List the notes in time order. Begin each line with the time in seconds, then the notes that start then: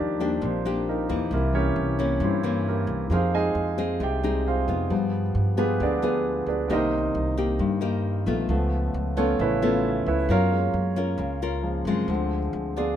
Already playing: D#2 D#3 F3 G3 A#3 D4 D#4 G4 A#4 D5
0.19 F3 G3 A#3 D4 G4
0.42 A#1 A#2 C4 C5
0.65 A#3 D4 G4
0.89 A#3 D#4 G4 A#4
1.09 D#2 E3 A#3
1.31 C2 C3 A#3 E4 G4 A#4
1.53 E3 A#3 C#4 G4 A#4 C#5
1.76 C2
1.99 E3 A#3 C#4
2.20 G2 C4 G4 C5
2.24 E4
2.43 E3 A#3 C#4
2.68 A#3 E4 G4 A#4
2.87 C2
3.10 F2 F3 C4 D#4 F4 G#4 C5 F5
3.34 G#3 D#4 G#4 D#5 F5 G#5
3.55 F2
3.78 C4 D#4 G#4
4.00 C2 C3 G4 G5
4.23 G3 G#3 C4 D#4 G#4
4.48 F4 G#4 C5 F5
4.68 F2 B3 F4
4.90 G2 F3 G3 B3
5.35 G2
5.57 F3 G#3 B3 F4 G4 G#4 B4
5.80 D2 D3 D4 G#4 B4 D5
6.02 B3 F4 G4 G#4 B4
6.46 D2 D4 G#4 B4 D5
6.68 C2 C3 D#3 A#3 D#4 G4 D5
6.73 D#4 A#4 C5 D#5
7.15 C2
7.37 A#3 D#4 G4
7.59 G2
7.81 A#3 D#4 G4
8.26 A#1 A3 B3 F4
8.49 C#2 C#3 F3 A3 B3
8.94 C#2
9.17 A3 B3 C#4 F4 A4 C#5
9.39 A1 C#3 E4 B4 C#5 E5
9.62 A3 B3 C#4 F4 A4 C#5
10.06 C#2 E4 B4 C#5 E5
10.29 F#2 F#3 C#4 F4 A#4 C#5 F5
10.51 G#3 A#3
10.74 F#2
10.96 C#4 F4 A#4
11.18 C#2 C#3
11.42 C#4 F4 A#4
11.63 F3 G#3 A#3
11.85 F#2 G#3 C4 F4
12.08 D2 D3 F3 G#3 C4
12.53 D2
12.77 B3 D4 F4 G#4 D5